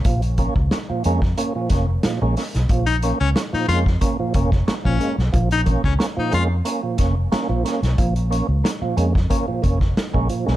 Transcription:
<<
  \new Staff \with { instrumentName = "Baritone saxophone" } { \time 4/4 \key bes \minor \tempo 4 = 91 r1 | r16 ees'16 r16 des'16 r16 ees'16 f'16 r4. des'8 r16 | r16 ees'16 r16 des'16 r16 ees'16 f'16 r2 r16 | r1 | }
  \new Staff \with { instrumentName = "Tonewheel organ" } { \time 4/4 \key bes \minor <bes, f>16 r16 <bes des'>16 r16 <bes des'>16 <bes, f>16 <aes bes des'>16 r16 <bes des'>16 <bes, f>16 <bes des'>16 r16 <bes, f>16 <aes bes des'>16 <bes des'>16 r16 | <bes, f>16 r16 <bes des'>16 r16 <bes des'>16 <bes, f>16 <aes bes des'>16 r16 <bes des'>16 <bes, f>16 <bes des'>16 r16 <bes des'>16 <bes, f>16 <aes bes des'>16 r16 | <bes, f>16 r16 <bes des'>16 r16 <bes des'>16 <bes, f>16 <aes bes des'>16 r16 <bes des'>16 <bes, f>16 <bes des'>16 r16 <bes des'>16 <bes, f>16 <bes des'>16 r16 | <bes, f>16 r16 <bes des'>16 r16 <bes des'>16 <bes, f>16 <aes bes des'>16 r16 <bes des'>16 <bes, f>16 <bes des'>16 r8 <aes bes des'>16 <bes, f>16 <aes bes des'>16 | }
  \new Staff \with { instrumentName = "Fingered electric bass" } { \clef bass \time 4/4 \key bes \minor bes,,8. des,16 r8 f,8 r8 f,,8 r16 bes,,16 r16 ces,16 | bes,,8. des,16 r8 f,8 r8 f,,8 r16 bes,,16 r16 ces,16 | bes,,8. des,16 r8 f,8 r8 f,,8 r16 bes,,16 r16 ces,16 | bes,,8. des,16 r8 f,8 r8 f,,8 r16 bes,,16 r16 ces,16 | }
  \new DrumStaff \with { instrumentName = "Drums" } \drummode { \time 4/4 <hh bd>16 hh16 <hh bd>16 bd16 <hh sn>8 hh16 <bd sn>16 hh8 <hh bd sn>8 <hh sn>8 <hho sn>16 <hh sn>16 | <hh bd>16 hh16 hh8 <hh sn>8 hh16 <bd sn>16 <hh bd>8 <hh bd>16 <bd sn>16 <hh sn>16 bd16 hh16 sn16 | <hh bd>16 hh16 <hh bd>16 bd16 <hh sn>8 hh8 hh8 <hh bd sn>8 <hh sn>8 <hh sn>16 <hh sn>16 | <hh bd>16 hh16 hh8 <hh sn>8 hh16 <bd sn>16 <hh bd>8 <hh bd>16 <bd sn>16 <hh sn>16 bd16 hh16 sn16 | }
>>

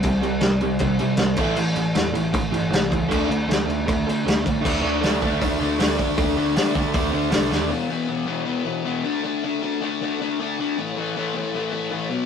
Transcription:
<<
  \new Staff \with { instrumentName = "Overdriven electric guitar" } { \clef bass \time 4/4 \key d \mixolydian \tempo 4 = 157 <c g>8 <c g>8 <c g>8 <c g>8 <c g>8 <c g>8 <c g>8 <a, e a>8 | <a, e>8 <a, e>8 <a, e>8 <a, e>8 <a, e>8 <a, e>8 <a, e>8 <a, e>8 | <d a d'>8 <d a>8 <d a>8 <d a>8 <d a>8 <d a>8 <d a>8 <d a>8 | <d a d'>8 <d a d'>8 <d a d'>8 <d a d'>8 <d a d'>8 <d a d'>8 <d a d'>8 <d a d'>8 |
<d a d'>8 <d a d'>8 <d a d'>8 <d a d'>8 <d a d'>8 <d a d'>8 <d a d'>8 <d a d'>8 | r1 | r1 | r1 | }
  \new Staff \with { instrumentName = "Overdriven electric guitar" } { \clef bass \time 4/4 \key d \mixolydian <c g>8 <c g>8 <c g>8 <c g>8 <c g>8 <c g>8 <c g>8 <a, e a>8 | <a, e>8 <a, e>8 <a, e>8 <a, e>8 <a, e>8 <a, e>8 <a, e>8 <a, e>8 | <d a d'>8 <d a>8 <d a>8 <d a>8 <d a>8 <d a>8 <d a>8 <d a>8 | <d a d'>8 <d a d'>8 <d a d'>8 <d a d'>8 <d a d'>8 <d a d'>8 <d a d'>8 <d a d'>8 |
<d a d'>8 <d a d'>8 <d a d'>8 <d a d'>8 <d a d'>8 <d a d'>8 <d a d'>8 <d a d'>8 | <e, b, e>8 <e, b, e>8 <e, b, e>8 <e, b, e>8 <e, b, e>8 <e, b, e>8 <e, b, e>8 <d a d'>8 | <d a d'>8 <d a d'>8 <d a d'>8 <d a d'>8 <d a d'>8 <d a d'>8 <d a d'>8 <d a d'>8 | <a, e a>8 <a, e a>8 <a, e a>8 <a, e a>8 <a, e a>8 <a, e a>8 <a, e a>8 <b, fis b>8 | }
  \new Staff \with { instrumentName = "Picked electric bass" } { \clef bass \time 4/4 \key d \mixolydian c,8 c,8 c,8 c,8 c,8 c8 c,8 a,,8 | a,,8 a,,8 e,8 a,,8 a,,8 g,,8 c,8 cis,8 | d,8 d,8 d,8 d,8 d,8 d8 d,8 a,8 | d,8 d,8 d,8 d,8 d,8 d,8 d,8 d,8 |
d,8 d,8 d,4 d,8 d,8 c,8 dis,8 | r1 | r1 | r1 | }
  \new DrumStaff \with { instrumentName = "Drums" } \drummode { \time 4/4 <cymc bd>8 cymc8 <cymc sn>8 cymc8 <cymc bd>8 cymc8 <cymc sn>8 <cymc bd>8 | cymc8 cymc8 <cymc sn>8 cymc8 <cymc bd>8 cymc8 <cymc sn>8 <cymc bd>8 | <cymc bd>8 cymc8 <cymc sn>8 cymc8 <cymc bd>8 cymc8 <cymc sn>8 <cymc bd>8 | <cymc bd>4 <hho sn>8 bd8 <hho bd>4 <hho sn>8 bd8 |
<hho bd>4 <hho sn>8 bd8 <hho bd>4 <hho sn>8 sn8 | r4 r4 r4 r4 | r4 r4 r4 r4 | r4 r4 r4 r4 | }
>>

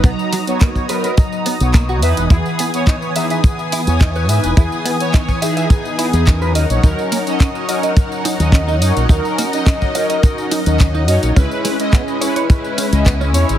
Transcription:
<<
  \new Staff \with { instrumentName = "String section" } { \time 4/4 \key dis \phrygian \tempo 4 = 106 << { fis'2.~ fis'8 <e b' gis''>8~ | <e b' gis''>1~ | <e b' gis''>2.~ <e b' gis''>8 <dis' ais' fis''>8~ | <dis' ais' fis''>1~ |
<dis' ais' fis''>1 | <cis' e' gis'>1 | } \\ { dis'''1~ | dis'''1~ | dis'''2.~ dis'''8 cis''8~ | cis''2.~ cis''8 dis''8~ |
dis''1 | b'1 | } >> }
  \new Staff \with { instrumentName = "Clean electric guitar" } { \time 4/4 \key dis \phrygian b16 r16 fis16 r16 ais16 r16 b'16 b'16 r8 b16 r16 ais16 fis'16 e''16 r16 | e'16 r16 b16 r16 dis'16 r16 e''16 e''16 r8 e'16 r16 dis'16 b'16 e''16 r16 | e'16 r16 b16 r16 dis'16 r16 e''16 e''16 r8 e'16 r16 dis'16 b'16 dis''16 r16 | dis'16 r16 ais16 r16 cis'16 r16 dis''16 dis''16 r8 dis'16 r16 cis'16 dis'16 dis''16 r16 |
dis'16 r16 ais16 r16 cis'16 r16 dis''16 dis''16 r8 dis'16 r16 cis'16 dis'16 dis''16 r16 | cis'16 r16 gis16 r16 b16 r16 cis''16 cis''16 r8 cis'16 r16 b16 cis'16 cis''16 r16 | }
  \new Staff \with { instrumentName = "Analog polysynth" } { \time 4/4 \key dis \phrygian <fis dis' ais''>8. <fis b dis' cis''>8. <fis b dis' ais'>8 <fis dis' ais''>8. <fis b dis' cis''>8. <e b dis' b'>8 | <e b gis'>8. <e b cis''>8. <e b dis' gis'>8 <e b gis'>8. <e b cis''>8. <e b dis' b'>8 | <e b gis'>8. <e b cis''>8. <e b dis' gis'>8 <e b dis' gis'>8 <e b dis' gis'>16 <e b dis' gis'>16 <fis cis' dis' ais'>8. <fis cis' dis' cis''>16 | <fis cis' dis' ais'>8. <fis cis' dis' dis''>8. <fis cis' dis' ais'>8 <fis cis' dis' ais'>8. <fis cis' dis' dis''>8. <fis cis' dis' cis''>8 |
<fis cis' dis' ais'>8. <fis cis' dis' dis''>8. <fis cis' dis' ais'>8 <fis cis' dis' ais'>8. <fis cis' dis' dis''>8. <fis cis' dis' cis''>8 | <gis cis' e' b'>8. <gis cis' e' dis''>8. <gis cis' e' b'>8 <gis cis' b'>8. <gis cis' e' dis''>8. <gis cis' e' cis''>8 | }
  \new Staff \with { instrumentName = "Fingered electric bass" } { \clef bass \time 4/4 \key dis \phrygian b,,16 r2 r8 b,,8. e,16 e,,16 | e,16 r2 r8 e,8. gis,16 e,,16 | e,16 r2 r8 e,8. dis,16 ais,,16 | dis,16 r2 r8 dis,8. fis,16 ais,,16 |
dis,16 r2 r8 dis,8. fis,16 ais,,16 | cis,16 r2 r8 cis,8. e,16 gis,,16 | }
  \new DrumStaff \with { instrumentName = "Drums" } \drummode { \time 4/4 <hh bd tamb>16 tamb16 <hho tamb>16 <hh tamb>16 <hc hh bd tamb>16 <bd tamb>16 <hho tamb>16 <hh tamb>16 <hh bd tamb>16 tamb16 <hho tamb>16 <hh tamb>16 <hc hh bd tamb>16 tamb16 <hho tamb>16 <hh tamb>16 | <hh bd tamb>16 tamb16 <hho tamb>16 <hh tamb>16 <hc hh bd tamb>16 tamb16 <hho tamb>16 <hh tamb>16 <hh bd tamb>16 tamb16 <hho tamb>16 <hh tamb>16 <hc hh bd tamb>16 tamb16 <hho tamb>16 <hh tamb>16 | <hh bd tamb>16 tamb16 <hho tamb>16 <hh tamb>16 <hc hh bd tamb>16 <bd tamb>16 <hho tamb>16 <hh tamb>16 <hh bd tamb>16 tamb16 <hho tamb>16 <hh tamb>16 <hc hh bd tamb>16 tamb16 <hho tamb>16 <hh tamb>16 | <hh bd tamb>16 tamb16 <hho tamb>16 <hh tamb>16 <hc hh bd tamb>16 tamb16 <hho tamb>16 <hh tamb>16 <hh bd tamb>16 tamb16 <hho tamb>16 <hh tamb>16 <hc hh bd tamb>16 tamb16 <hho tamb>16 <hh tamb>16 |
<hh bd tamb>16 tamb16 <hho tamb>16 <hh tamb>16 <hc hh bd tamb>16 <bd tamb>16 <hho tamb>16 <hh tamb>16 <hh bd tamb>16 tamb16 <hho tamb>16 <hh tamb>16 <hc hh bd tamb>16 tamb16 <hho tamb>16 <hh tamb>16 | <hh bd tamb>16 tamb16 <hho tamb>16 <hh tamb>16 <hc hh bd tamb>16 tamb16 <hho tamb>16 <hh tamb>16 <hh bd tamb>16 tamb16 <hho tamb>16 <hh tamb>16 <hc hh bd tamb>16 tamb16 <hho tamb>16 <hh tamb>16 | }
>>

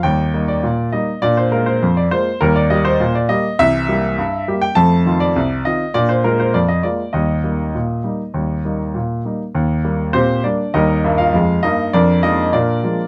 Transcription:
<<
  \new Staff \with { instrumentName = "Upright piano" } { \time 2/4 \key ees \major \tempo 4 = 101 g''8. d''8. ees''8 | d''16 c''16 bes'16 c''8 d''16 c''8 | bes'16 d''16 ees''16 c''8 d''16 ees''8 | e''4.~ e''16 g''16 |
a''8. d''8. ees''8 | d''16 c''16 bes'16 c''16 d''16 ees''16 d''8 | ees''2~ | ees''4. r8 |
r4 <c' g' c''>8 <d' d''>8 | <ees' bes' ees''>8. <f' f''>8. <ees' ees''>8 | <d' bes' d''>8 <ees' ees''>8 <d' bes' d''>4 | }
  \new Staff \with { instrumentName = "Upright piano" } { \clef bass \time 2/4 \key ees \major <ees, g>8 <g bes ees'>8 bes,8 <g bes ees'>8 | <bes, d'>8 <aes bes f'>8 f,8 <aes bes f'>8 | <ees, g>8 <g bes g'>8 bes,8 <g bes g'>8 | <c, e>8 <g bes g'>8 g,8 <g bes g'>8 |
<f, a>8 <ees c' f'>8 c,8 <ees c' f'>8 | <bes, d'>8 <aes bes f'>8 f,8 <aes bes f'>8 | <ees, g>8 <g bes ees'>8 bes,8 <g bes ees'>8 | <ees, g>8 <g bes ees'>8 bes,8 <g bes ees'>8 |
ees,8 <g bes>8 bes,8 <g bes>8 | <ees, g>8 <g, bes>8 <f, aes>8 <g, bes>8 | f,8 <f aes bes>8 bes,8 <f aes bes>8 | }
>>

